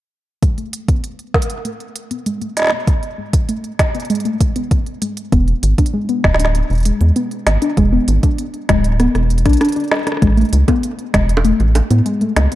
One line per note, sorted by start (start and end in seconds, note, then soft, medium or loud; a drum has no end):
0.43 0.51 G#3 loud
0.43 kick loud
0.43 closed hi-hat soft
0.58 0.66 A3 medium
0.58 closed hi-hat soft
0.73 closed hi-hat medium
0.88 0.97 B3 medium
0.88 kick loud
0.88 closed hi-hat soft
1.04 closed hi-hat soft
1.19 closed hi-hat soft
1.34 1.39 G#3 medium
1.34 kick loud
1.34 snare loud
1.42 closed hi-hat medium
1.50 closed hi-hat soft
1.65 1.77 A3 medium
1.65 closed hi-hat soft
1.80 closed hi-hat soft
1.96 closed hi-hat medium
2.11 2.16 B3 medium
2.11 closed hi-hat soft
2.26 2.34 G#3 loud
2.26 closed hi-hat soft
2.42 2.50 A3 medium
2.42 closed hi-hat soft
2.57 snare soft
2.57 closed hi-hat medium
2.59 snare medium
2.62 snare medium
2.64 snare medium
2.67 snare medium
2.70 2.80 B3 medium
2.70 snare medium
2.87 kick loud
2.87 closed hi-hat soft
3.03 closed hi-hat soft
3.18 3.23 G#3 medium
3.33 kick loud
3.33 closed hi-hat medium
3.49 3.61 A3 medium
3.49 closed hi-hat soft
3.64 closed hi-hat soft
3.79 kick loud
3.79 snare loud
3.79 closed hi-hat medium
3.95 3.99 B3 medium
3.95 closed hi-hat soft
4.00 closed hi-hat soft
4.05 closed hi-hat soft
4.10 4.18 G#3 medium
4.10 closed hi-hat soft
4.15 closed hi-hat soft
4.20 closed hi-hat soft
4.25 4.33 A3 medium
4.25 closed hi-hat soft
4.41 kick loud
4.41 closed hi-hat medium
4.56 4.64 B3 medium
4.56 closed hi-hat medium
4.71 kick loud
4.71 closed hi-hat medium
4.86 closed hi-hat soft
5.02 5.07 G#3 medium
5.02 closed hi-hat medium
5.17 closed hi-hat soft
5.32 5.54 E1 medium
5.32 5.45 B3 medium
5.32 kick loud
5.32 closed hi-hat soft
5.48 closed hi-hat soft
5.63 5.74 G#1 medium
5.63 closed hi-hat medium
5.78 5.83 D4 medium
5.78 kick loud
5.78 closed hi-hat soft
5.86 closed hi-hat soft
5.94 6.02 G#3 loud
6.09 6.17 B3 medium
6.09 closed hi-hat soft
6.24 6.63 D1 loud
6.24 kick loud
6.24 snare loud
6.34 snare medium
6.40 6.48 D4 medium
6.40 closed hi-hat medium
6.45 snare medium
6.55 closed hi-hat soft
6.70 6.92 E1 medium
6.70 closed hi-hat soft
6.73 closed hi-hat soft
6.75 closed hi-hat soft
6.78 closed hi-hat soft
6.80 closed hi-hat soft
6.83 closed hi-hat soft
6.85 6.90 G#3 medium
6.85 closed hi-hat medium
7.01 7.12 E2 medium
7.01 closed hi-hat soft
7.16 7.28 B3 medium
7.16 closed hi-hat soft
7.31 closed hi-hat soft
7.47 7.57 G#1 medium
7.47 snare loud
7.47 closed hi-hat medium
7.62 7.67 D4 medium
7.62 closed hi-hat medium
7.77 7.99 E1 loud
7.77 7.85 G#3 loud
7.77 kick loud
7.77 closed hi-hat soft
7.93 8.01 B3 medium
8.08 8.19 G#1 medium
8.08 closed hi-hat medium
8.23 8.31 D4 medium
8.23 kick loud
8.23 closed hi-hat soft
8.38 closed hi-hat soft
8.54 closed hi-hat soft
8.69 9.08 D1 loud
8.69 8.74 G#3 medium
8.69 kick loud
8.69 snare loud
8.69 closed hi-hat medium
8.84 closed hi-hat soft
9.00 9.12 B3 medium
9.00 cross-stick medium
9.00 closed hi-hat soft
9.15 9.47 E1 medium
9.15 cross-stick medium
9.15 closed hi-hat soft
9.30 closed hi-hat soft
9.38 closed hi-hat soft
9.46 9.56 B1 medium
9.46 9.51 D4 loud
9.46 kick loud
9.46 cross-stick medium
9.46 closed hi-hat medium
9.49 closed hi-hat soft
9.53 closed hi-hat medium
9.57 cross-stick medium
9.57 closed hi-hat soft
9.61 9.69 D4 loud
9.61 closed hi-hat soft
9.65 closed hi-hat soft
9.69 closed hi-hat soft
9.72 closed hi-hat soft
9.76 9.84 D4 loud
9.76 closed hi-hat soft
9.80 closed hi-hat soft
9.84 closed hi-hat soft
9.88 cross-stick medium
9.88 snare loud
9.88 closed hi-hat soft
9.92 cross-stick medium
9.92 closed hi-hat soft
9.95 cross-stick soft
9.95 closed hi-hat soft
9.99 cross-stick soft
9.99 closed hi-hat soft
10.03 cross-stick soft
10.03 closed hi-hat soft
10.07 10.12 D4 medium
10.07 cross-stick medium
10.07 closed hi-hat soft
10.12 cross-stick medium
10.17 cross-stick medium
10.22 10.44 A1 loud
10.22 10.30 G#3 loud
10.22 kick loud
10.22 cross-stick soft
10.22 closed hi-hat medium
10.27 cross-stick soft
10.32 cross-stick soft
10.37 10.46 A3 medium
10.37 closed hi-hat soft
10.41 closed hi-hat soft
10.45 closed hi-hat soft
10.49 closed hi-hat soft
10.53 10.64 C#2 loud
10.53 closed hi-hat medium
10.68 10.76 B3 medium
10.68 kick loud
10.68 closed hi-hat medium
10.68 high bongo soft
10.83 closed hi-hat medium
10.99 closed hi-hat soft
11.14 11.53 E1 loud
11.14 11.19 G#3 medium
11.14 kick loud
11.14 snare loud
11.14 closed hi-hat medium
11.29 closed hi-hat medium
11.37 high bongo medium
11.45 11.57 A3 medium
11.45 closed hi-hat medium
11.60 11.81 A1 medium
11.60 closed hi-hat soft
11.75 closed hi-hat medium
11.75 high bongo medium
11.91 12.01 A2 medium
11.91 11.95 B3 medium
11.91 closed hi-hat medium
12.06 12.14 G#3 loud
12.06 closed hi-hat medium
12.21 12.29 A3 medium
12.21 closed hi-hat soft
12.36 12.47 C#2 medium
12.36 snare loud
12.36 closed hi-hat medium
12.36 high bongo medium
12.52 12.55 B3 medium
12.52 closed hi-hat medium